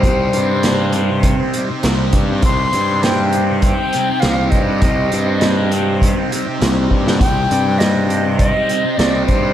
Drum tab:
HH |x-x-x-x-x-x-x-x-|x-x-x-x-x-x-x-x-|x-x-x-x-x-x-x---|x-x-x-x-x-x-x-x-|
SD |----o-------o---|----o-------o---|----o-------o--o|----o-------o---|
BD |o-------o-----o-|o-------o-----o-|o-------o-----o-|o-------o-----o-|